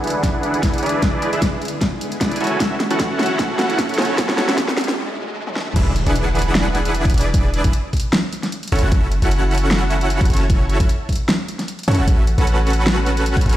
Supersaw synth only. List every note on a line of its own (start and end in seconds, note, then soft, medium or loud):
0.00 0.80 D4 medium
0.00 0.80 E4 medium
0.00 0.80 G#4 medium
0.00 0.80 B4 medium
0.00 0.80 F#5 loud
0.82 1.30 D4 medium
0.82 1.30 E4 medium
0.82 1.30 G#4 medium
0.82 1.30 B4 medium
0.82 1.30 D5 loud
1.33 1.41 D4 medium
1.33 1.41 E4 medium
1.33 1.41 G#4 medium
1.33 1.41 B4 medium
1.33 1.41 E5 loud
2.21 2.38 D4 medium
2.21 2.38 E4 medium
2.21 2.38 G#4 medium
2.21 2.38 B4 medium
2.21 2.38 D5 medium
2.40 2.58 C#4 medium
2.40 2.58 E4 medium
2.40 2.58 F#4 medium
2.40 2.58 A4 medium
2.40 2.58 G#5 medium
2.60 2.75 C#4 medium
2.60 2.75 E4 medium
2.60 2.75 F#4 medium
2.60 2.75 A4 medium
2.60 2.75 E5 medium
2.91 3.96 C#4 medium
2.91 3.96 E4 medium
2.91 3.96 F#4 medium
2.91 3.96 A4 medium
2.91 3.96 F#5 loud
3.98 4.46 C#4 loud
3.98 4.46 E4 medium
3.98 4.46 F#4 medium
3.98 4.46 A4 medium
3.98 4.46 C#5 loud
4.48 4.57 C#4 medium
4.48 4.57 E4 medium
4.48 4.57 F#4 medium
4.48 4.57 A4 medium
4.48 4.57 E5 loud
5.76 5.91 D4 medium
5.76 5.91 E4 medium
5.76 5.91 G#4 medium
5.76 5.91 B4 medium
5.76 5.91 E5 medium
6.06 7.12 D4 medium
6.06 7.12 E4 medium
6.06 7.12 G#4 medium
6.06 7.12 B4 medium
6.06 7.12 F#5 loud
7.14 7.62 D4 loud
7.14 7.62 E4 medium
7.14 7.62 G#4 medium
7.14 7.62 B4 medium
7.14 7.62 D5 loud
7.64 7.73 D4 medium
7.64 7.73 E4 medium
7.64 7.73 G#4 medium
7.64 7.73 B4 medium
7.64 7.73 E5 loud
8.72 8.81 C#4 medium
8.72 8.81 E4 medium
8.72 8.81 F#4 medium
8.72 8.81 A4 medium
8.72 8.81 C#5 medium
8.83 8.90 C#4 medium
8.83 8.90 E4 medium
8.83 8.90 F#4 medium
8.83 8.90 A4 medium
8.83 8.90 F#5 loud
8.92 9.07 C#4 medium
8.92 9.07 E4 medium
8.92 9.07 F#4 medium
8.92 9.07 A4 medium
8.92 9.07 E5 medium
9.22 10.28 C#4 medium
9.22 10.28 E4 medium
9.22 10.28 F#4 medium
9.22 10.28 A4 medium
9.22 10.28 F#5 loud
10.30 10.78 C#4 medium
10.30 10.78 E4 medium
10.30 10.78 F#4 medium
10.30 10.78 A4 medium
10.30 10.78 C#5 loud
10.80 10.89 C#4 medium
10.80 10.89 E4 medium
10.80 10.89 F#4 medium
10.80 10.88 A4 medium
10.80 10.88 E5 loud
11.88 11.97 C#4 medium
11.88 11.97 E4 medium
11.88 11.97 F#4 medium
11.88 11.97 A4 medium
11.88 11.97 C#5 loud
11.98 12.05 C#4 loud
11.98 12.05 E4 medium
11.98 12.05 F#4 medium
11.98 12.05 A4 medium
11.98 12.05 F#5 loud
12.08 12.23 C#4 medium
12.08 12.23 F#4 medium
12.08 12.23 A4 medium
12.08 12.23 B4 medium
12.08 12.23 E5 medium
12.38 13.44 C#4 medium
12.38 13.44 F#4 medium
12.38 13.44 A4 medium
12.38 13.44 B4 medium
12.38 13.44 F#5 loud
13.46 13.57 C#4 loud
13.46 13.57 F#4 medium
13.46 13.57 A4 medium
13.46 13.57 B4 medium
13.46 13.57 C#5 loud